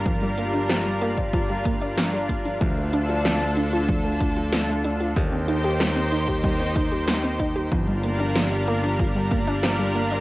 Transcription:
<<
  \new Staff \with { instrumentName = "Analog synth pad" } { \time 4/4 \key g \minor \tempo 4 = 94 << { <g bes'>1 | <d a'>1 | <ees c''>1 | <g bes'>1 | } \\ { <d' f'>1~ | <d' f'>1 | <ees' g'>1 | <d' f'>1 | } >> }
  \new Staff \with { instrumentName = "Synth arpeggio sound" } { \time 4/4 \key g \minor f16 g16 bes16 d'16 f16 g16 bes16 d'16 f16 g16 bes16 d'16 f16 g16 bes16 d'16 | f16 a16 d'16 f'16 f16 a16 d'16 f'16 f16 a16 d'16 f'16 f16 a16 d'16 f'16 | g16 c'16 ees'16 g'16 g16 c'16 ees'16 g'16 g16 c'16 ees'16 g'16 g16 c'16 ees'16 g'16 | f16 g16 bes16 d'16 f16 g16 bes16 d'16 f16 g16 bes16 d'16 f16 g16 bes16 d'16 | }
  \new Staff \with { instrumentName = "Picked electric bass" } { \clef bass \time 4/4 \key g \minor g,,1 | d,1 | ees,1 | g,,1 | }
  \new DrumStaff \with { instrumentName = "Drums" } \drummode { \time 4/4 <hh bd>16 hh16 hh16 hh16 <hh sn>16 hh16 hh16 <hh bd>16 <hh bd>16 hh16 <hh bd>16 hh16 <hh sn>16 hh16 <hh bd>16 hh16 | <hh bd>16 hh16 hh16 hh16 <hh sn>16 hh16 hh16 hh16 <hh bd>16 hh16 <hh bd>16 hh16 <hh sn>16 hh16 hh16 hh16 | <hh bd>16 hh16 hh16 hh16 <hh sn>16 hh16 hh16 <hh bd>16 <hh bd>16 hh16 <hh bd>16 hh16 <hh sn>16 hh16 <hh bd>16 hh16 | <hh bd>16 hh16 hh16 hh16 <hh sn>16 hh16 hh16 hh16 <hh bd>16 hh16 <hh bd>16 hh16 <hh sn>16 hh16 hh16 hh16 | }
>>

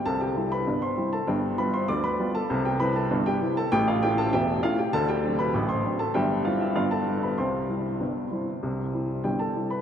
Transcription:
<<
  \new Staff \with { instrumentName = "Upright piano" } { \time 2/4 \key c \major \tempo 4 = 98 <a' a''>16 <g' g''>8 <b' b''>8 <c'' c'''>8 <a' a''>16 | <g' d'' g''>8 <b' b''>16 <c'' c'''>16 <d'' d'''>16 <b' b''>8 <a' a''>16~ | <a' a''>16 <g' g''>16 <b' b''>16 <a' a''>8 <g' g''>8 <a' a''>16 | <g' g''>16 <f' f''>16 <g' g''>16 <a' a''>16 <g' e'' g''>8 <f' f''>16 <g' g''>16 |
<a' a''>16 <g' g''>8 <b' b''>8 <c'' c'''>8 <a' a''>16 | <g' e'' g''>8 <f' f''>16 <e' e''>16 <f' f''>16 <a' a''>8 <b' b''>16 | <c'' g'' c'''>2~ | <c'' g'' c'''>4 <g' g''>16 <a' a''>8 <b' b''>16 | }
  \new Staff \with { instrumentName = "Upright piano" } { \clef bass \time 2/4 \key c \major <c, c>8 <g c' e'>8 <g,, g,>8 <g c' e'>8 | <g,, g,>8 <g b f'>8 <d, d>8 <g b f'>8 | <c, c>8 <g c' e'>8 <g,, g,>8 <g c' e'>8 | <a,, a,>8 <a cis' e'>8 <e,, e,>8 <a cis' e'>8 |
<d, d>8 <fis c' d'>8 <a,, a,>8 <fis c' d'>8 | <g,, g,>8 <g c' e'>8 <g,, g,>8 <g b d'>8 | <c, c>8 <g c' e'>8 <g,, g,>8 <g c' e'>8 | <c, c>8 <g c' e'>8 <g,, g,>8 <g c' e'>8 | }
>>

